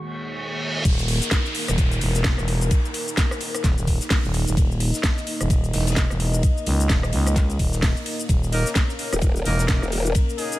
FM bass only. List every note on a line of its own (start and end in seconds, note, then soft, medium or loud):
0.85 1.20 D#1 loud
1.68 2.00 D#1 loud
2.01 2.36 E1 loud
2.38 2.69 E1 loud
3.64 3.75 D#1 loud
3.78 3.99 D#1 loud
4.24 4.45 D#1 loud
4.47 4.56 D#1 loud
4.57 4.92 D#1 loud
5.40 5.72 D#1 loud
5.73 6.08 E1 loud
6.10 6.42 E1 loud
6.66 6.88 C#2 loud
6.90 7.11 D#1 medium
7.13 7.58 C#2 medium
7.59 7.94 D#1 loud
8.29 8.64 D#1 medium
9.45 9.80 E1 loud